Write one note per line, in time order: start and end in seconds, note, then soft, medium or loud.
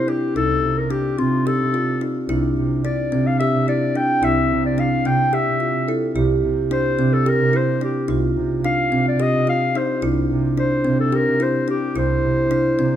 0.00 0.32 E4 medium
0.00 0.10 C5 medium
0.08 0.29 D4 medium
0.08 0.36 G4 medium
0.35 0.48 C2 medium
0.35 2.35 D#4 medium
0.35 0.78 D#4 medium
0.35 0.79 A4 medium
0.63 0.89 C3 medium
0.77 0.92 A#4 medium
0.90 1.12 D4 medium
0.90 1.20 G4 medium
1.18 1.44 C3 medium
1.18 1.40 C4 medium
1.18 1.48 F4 medium
1.47 1.68 G4 medium
1.47 2.09 A4 medium
1.60 1.86 C3 medium
1.74 1.95 F4 medium
2.01 2.23 D#4 medium
2.29 2.42 C2 medium
2.29 4.29 D4 medium
2.29 2.71 E4 medium
2.57 2.83 C3 medium
2.84 3.06 D4 medium
2.84 3.28 D5 medium
3.12 3.38 C3 medium
3.12 3.33 C4 medium
3.27 3.39 F5 medium
3.40 3.61 G4 medium
3.40 3.66 E5 medium
3.53 3.79 C3 medium
3.68 3.89 E4 medium
3.68 3.98 D5 medium
3.95 4.16 D4 medium
3.95 4.26 G5 medium
4.22 4.35 C2 medium
4.22 5.93 C4 medium
4.22 4.65 E4 medium
4.22 4.65 E5 medium
4.50 4.76 C3 medium
4.65 4.81 D5 medium
4.78 4.99 D4 medium
4.78 5.08 F5 medium
5.05 5.31 C3 medium
5.05 5.27 C4 medium
5.05 5.35 G5 medium
5.33 5.54 G4 medium
5.33 5.96 E5 medium
5.47 5.73 C3 medium
5.60 5.82 F4 medium
5.88 6.10 E4 medium
5.88 6.00 A4 medium
6.15 6.29 C2 medium
6.15 6.58 E4 medium
6.15 8.15 G4 medium
6.43 6.69 C3 medium
6.71 6.92 D4 medium
6.71 7.15 C5 medium
6.99 7.25 C3 medium
6.99 7.20 C4 medium
7.13 7.30 A4 medium
7.26 7.47 G4 medium
7.26 7.57 A#4 medium
7.40 7.66 C3 medium
7.53 7.75 E4 medium
7.53 7.83 C5 medium
7.81 8.03 D4 medium
7.81 8.09 G4 medium
8.08 8.22 C2 medium
8.08 8.51 D#4 medium
8.08 10.09 F4 medium
8.37 8.63 C3 medium
8.64 8.86 D4 medium
8.64 9.03 F5 medium
8.92 9.18 C3 medium
8.92 9.13 C4 medium
9.08 9.23 D5 medium
9.20 9.41 G4 medium
9.20 9.48 D#5 medium
9.34 9.59 C3 medium
9.47 9.68 F4 medium
9.47 9.79 F5 medium
9.75 9.96 D#4 medium
9.75 10.04 C5 medium
10.02 10.15 C2 medium
10.02 11.92 D4 medium
10.02 10.44 E4 medium
10.31 10.56 C3 medium
10.57 10.79 D4 medium
10.57 10.97 C5 medium
10.84 11.11 C3 medium
10.84 11.06 C4 medium
11.00 11.17 A4 medium
11.12 11.34 G4 medium
11.12 11.44 A#4 medium
11.27 11.53 C3 medium
11.40 11.61 E4 medium
11.40 11.69 C5 medium
11.68 11.89 D4 medium
11.68 11.99 G4 medium
11.96 12.09 C2 medium
11.96 12.38 E4 medium
11.96 12.81 E4 medium
11.96 12.96 C5 medium
12.23 12.49 C3 medium
12.51 12.72 D4 medium
12.79 12.96 C3 medium
12.79 12.96 C4 medium